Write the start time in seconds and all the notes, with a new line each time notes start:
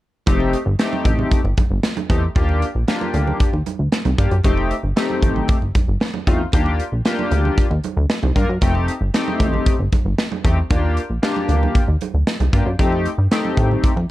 0.26 F1 A3 C4 D#4 G4, kick, closed hi-hat, muted conga
0.40 muted conga
0.53 closed hi-hat
0.66 G1
0.79 A3 C4 D#4 G4, snare, closed hi-hat, muted conga
0.93 muted conga, high conga
1.04 A1, kick, closed hi-hat, low conga
1.19 high conga, low conga
1.31 kick, closed hi-hat, muted conga
1.44 G1, muted conga
1.57 kick, closed hi-hat, high conga
1.71 G1
1.83 snare, closed hi-hat
1.97 closed hi-hat, muted conga, high conga
2.09 E2 A3 C4 D#4 G4, kick, closed hi-hat
2.35 D#2 A#3 D4 F4 G4, kick, closed hi-hat, muted conga
2.49 muted conga
2.62 closed hi-hat
2.75 A#1
2.88 A#3 D4 F4 G4, snare, closed hi-hat, muted conga
3.01 muted conga, high conga
3.13 D2, closed hi-hat, low conga
3.27 high conga, low conga
3.40 kick, closed hi-hat, muted conga
3.53 D#2, muted conga
3.66 closed hi-hat, high conga
3.79 D2
3.92 snare, closed hi-hat, muted conga
4.05 C2, closed hi-hat, muted conga, high conga
4.18 G2 A#3 D4 F4 G4, kick, closed hi-hat
4.31 F#2, closed hi-hat
4.43 F1 A3 C4 D#4 G4, kick, closed hi-hat, muted conga
4.57 muted conga
4.71 closed hi-hat
4.83 G1
4.96 A3 C4 D#4 G4, snare, closed hi-hat, muted conga
5.10 high conga
5.22 A1, kick, closed hi-hat, low conga
5.36 high conga, low conga
5.48 kick, closed hi-hat, muted conga
5.62 G1, muted conga
5.75 kick, closed hi-hat, high conga
5.88 G1
6.00 snare, closed hi-hat, muted conga
6.14 high conga
6.27 E2 A3 C4 D#4 F4, kick, closed hi-hat
6.52 D#2 A#3 D4 F4 G4, kick, closed hi-hat, muted conga
6.66 muted conga
6.80 closed hi-hat
6.92 A#1
7.05 A#3 D4 F4 G4, snare, closed hi-hat, muted conga
7.19 muted conga, high conga
7.31 D2, closed hi-hat, low conga
7.45 high conga, low conga
7.58 kick, closed hi-hat
7.71 D#2, muted conga
7.84 closed hi-hat, high conga
7.97 D2
8.10 snare, closed hi-hat, muted conga
8.23 C2, muted conga, high conga
8.35 G2 A#3 D4 F4 A#4, kick, closed hi-hat
8.49 F#2
8.61 F1 A3 C4 D#4 G4, kick, closed hi-hat, muted conga
8.75 muted conga
8.88 closed hi-hat
9.01 G1
9.14 A3 C4 D#4 G4, snare, closed hi-hat, muted conga
9.28 muted conga, high conga
9.39 A1, kick, closed hi-hat, low conga
9.54 high conga, low conga
9.66 kick, closed hi-hat
9.79 G1
9.92 kick, closed hi-hat, high conga
10.05 G1
10.18 snare, closed hi-hat
10.32 muted conga, high conga
10.44 E2 A3 C4 D#4 G4, kick, closed hi-hat
10.70 D#2 A#3 D4 F4 G4, kick, closed hi-hat, muted conga
10.97 closed hi-hat
11.10 A#1
11.22 A#3 D4 F4 G4, snare, closed hi-hat, muted conga
11.36 muted conga, high conga
11.48 D2, closed hi-hat, low conga
11.63 high conga, low conga
11.75 kick, closed hi-hat, muted conga
11.88 D#2
12.01 closed hi-hat, high conga
12.14 D2
12.27 snare, closed hi-hat, muted conga
12.40 C2, closed hi-hat, high conga
12.53 G2 A#3 D4 F4 G4, kick, closed hi-hat
12.66 F#2
12.79 F2 A3 C4 D#4 G4, kick, closed hi-hat
12.92 muted conga
13.06 closed hi-hat
13.18 G2
13.31 A3 C4 D#4 G4, snare, closed hi-hat
13.45 high conga
13.57 A2, kick, closed hi-hat, low conga
13.71 high conga, low conga
13.83 kick, closed hi-hat, muted conga
13.96 F2, muted conga